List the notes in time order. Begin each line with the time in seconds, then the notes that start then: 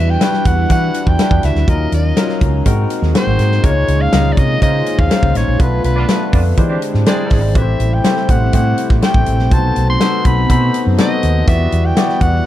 Already playing: E2 E3 G3 D4 E4 F#4 B4 E5
0.10 G5
0.20 G3 D4 E4 F#4 B4, snare, closed hi-hat
0.34 snare
0.45 E2 F#5, kick, closed hi-hat
0.69 E3 G3 D4 E4 F#4 B4 F#5, kick, closed hi-hat
0.94 closed hi-hat
1.07 E2 G5, kick
1.18 G3 D4 E4 F#4 B4, snare, closed hi-hat
1.31 E2, kick
1.43 C#2 E5, snare, closed hi-hat
1.55 D2, snare
1.68 D#2 D#3 F#3 C#4 D#4 F4 A#4 D#5, kick, closed hi-hat
1.92 D#2 D#5, closed hi-hat
2.17 F#3 C#4 D#4 F4 A#4, snare, closed hi-hat
2.29 snare
2.41 C#2, kick, closed hi-hat
2.65 G#2 A#2 G#3 A#3 C4 D#4 F#4 A#4, kick, closed hi-hat
2.90 closed hi-hat
3.02 D#2, snare
3.14 G#3 C4 D#4 F#4 C5, snare, closed hi-hat
3.27 G#1
3.39 G#2, snare, closed hi-hat
3.52 snare
3.63 C#2 D#3 G#3 C#4 D#4 F4 A#4 C#5, kick, closed hi-hat
3.70 C#5
3.88 C#2, closed hi-hat
4.01 F5
4.13 C#2 G#3 C#4 D#4 F4 D#5, snare, closed hi-hat
4.32 D5
4.37 C3 D#5, kick, closed hi-hat
4.61 C#3 G#3 C#4 D#4 F4 C5 D#5, kick, closed hi-hat
4.86 closed hi-hat
4.99 D#2 F5, kick
5.10 G#3 C#4 D#4 F4 C5, snare, closed hi-hat
5.23 C#2, kick
5.35 A1 C#5, snare, closed hi-hat
5.48 A#1
5.59 B1 D3 A3 B3 D4 F4 B4, kick, closed hi-hat
5.84 B1 B4, closed hi-hat
5.96 B3 D4 F4
6.08 A3 B3 D4 F4 B4, snare, closed hi-hat
6.32 F2 B3 D4 F4, kick, open hi-hat
6.57 E3 G#3 C4 D4 E4 G4 C5, kick, closed hi-hat
6.70 C4 D4 G4
6.82 closed hi-hat
6.94 G#2, snare
7.06 G#3 C4 D4 E4 G#4 C5 D5 G5, snare, closed hi-hat
7.30 G#1, kick, snare, open hi-hat
7.55 A1 C3 G3 A3 C4 E4 G4 B4 E5, kick, closed hi-hat
7.62 C5
7.80 A1, closed hi-hat
7.94 G5
8.03 A3 C4 E4 G4 C5, snare, closed hi-hat
8.17 snare
8.29 A1 F#5, kick, closed hi-hat
8.53 A2 A3 C4 E4 G4 C5 F#5, kick, closed hi-hat
8.78 closed hi-hat
8.90 A1, kick, snare
9.02 A3 C4 E4 G4 C5 G5, snare, closed hi-hat
9.14 A1, kick
9.26 A1, closed hi-hat
9.39 A#1, snare
9.51 B1 B3 D#4 F#4 A4 C5 A5, kick, closed hi-hat
9.76 B1, closed hi-hat
9.90 C6
10.00 B3 D#4 F#4 A4 C5, snare, closed hi-hat
10.25 B1 B5, kick, closed hi-hat
10.49 B2 B3 D#4 F#4 A4 C5 B5, kick, closed hi-hat
10.74 closed hi-hat
10.87 F#2
10.98 B3 D#4 F#4 A4 C5 D#5, snare, closed hi-hat
11.23 D#2, closed hi-hat
11.47 E2 D3 E3 G3 B3 E4 F#4 G4 D5 E5, kick, closed hi-hat
11.72 E2, closed hi-hat
11.86 G5
11.96 B3 E4 F#4 G4 D5, snare, closed hi-hat
12.09 snare
12.21 E2 F#5, kick, closed hi-hat